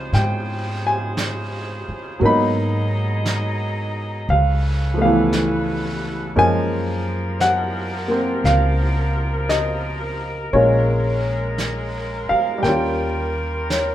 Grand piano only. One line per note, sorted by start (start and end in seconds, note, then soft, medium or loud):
0.00 2.19 F3 medium
0.00 2.20 G#3 soft
0.00 2.22 C4 soft
0.00 2.23 D#4 medium
0.00 2.23 C6 medium
0.14 0.81 G5 medium
0.87 1.85 G#5 medium
2.20 4.28 F#3 soft
2.20 4.29 A#3 soft
2.20 4.30 B3 soft
2.25 4.31 D#4 medium
2.25 4.27 B5 medium
4.30 4.96 F5 medium
4.94 6.33 F3 soft
4.94 6.35 A3 soft
5.01 6.39 E3 soft
5.01 6.37 B3 soft
5.01 6.00 F5 medium
6.36 10.54 F3 soft
6.36 10.52 G#3 soft
6.36 8.07 A#3 soft
6.36 10.53 C#4 soft
6.36 7.37 G#5 medium
7.41 8.41 F#5 medium
8.08 10.53 A#3 soft
8.08 10.54 C4 soft
8.45 9.53 F5 medium
9.49 10.50 D#5 medium
10.53 12.64 G#3 soft
10.53 12.61 A#3 soft
10.53 12.64 C#4 soft
10.53 12.64 F4 soft
10.53 11.54 C#5 medium
12.29 12.64 F5 medium
12.58 13.95 G3 soft
12.62 13.95 A#3 soft
12.62 13.95 C#4 soft
12.62 13.95 G5 medium
12.69 13.95 F4 soft
13.70 13.95 C#5 soft